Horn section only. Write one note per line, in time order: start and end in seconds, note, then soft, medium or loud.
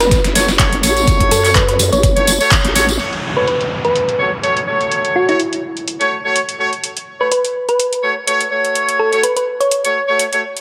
0.35 0.46 A3 medium
0.35 0.46 F#4 medium
0.35 0.46 C#5 loud
0.59 0.76 A3 medium
0.59 0.76 F#4 medium
0.59 0.76 C#5 loud
0.83 1.41 A3 medium
0.83 1.41 F#4 medium
0.83 1.41 C#5 medium
1.44 1.54 A3 loud
1.44 1.54 F#4 medium
1.44 1.54 C#5 loud
2.17 2.32 A3 medium
2.17 2.32 F#4 medium
2.17 2.32 C#5 loud
2.40 2.56 A3 loud
2.40 2.56 F#4 medium
2.40 2.56 C#5 loud
2.75 2.86 A3 loud
2.75 2.86 F#4 medium
2.75 2.86 C#5 loud
3.37 3.46 A3 medium
3.37 3.46 F#4 medium
3.37 3.46 C#5 medium
4.19 4.30 A3 medium
4.19 4.30 F#4 medium
4.19 4.30 C#5 medium
4.43 4.60 A3 medium
4.43 4.60 F#4 medium
4.43 4.60 C#5 loud
4.67 5.25 A3 medium
4.67 5.25 F#4 medium
4.67 5.25 C#5 medium
5.28 5.38 A3 medium
5.28 5.38 F#4 medium
5.28 5.38 C#5 loud
6.01 6.16 A3 medium
6.01 6.16 F#4 medium
6.01 6.16 C#5 medium
6.25 6.40 A3 medium
6.25 6.40 F#4 medium
6.25 6.40 C#5 loud
6.59 6.70 A3 medium
6.59 6.70 F#4 medium
6.59 6.70 C#5 loud
7.21 7.30 A3 medium
7.21 7.30 F#4 medium
7.21 7.30 C#5 medium
8.04 8.14 A3 medium
8.04 8.14 F#4 medium
8.04 8.14 C#5 medium
8.27 8.44 A3 medium
8.27 8.44 F#4 medium
8.27 8.44 C#5 loud
8.51 9.09 A3 medium
8.51 9.09 F#4 medium
8.51 9.09 C#5 medium
9.12 9.22 A3 medium
9.12 9.22 F#4 medium
9.12 9.22 C#5 loud
9.84 10.00 A3 medium
9.84 10.00 F#4 medium
9.84 10.00 C#5 medium
10.09 10.24 A3 medium
10.09 10.24 F#4 medium
10.09 10.24 C#5 loud
10.32 10.42 A3 medium
10.32 10.42 F#4 medium
10.32 10.42 C#5 medium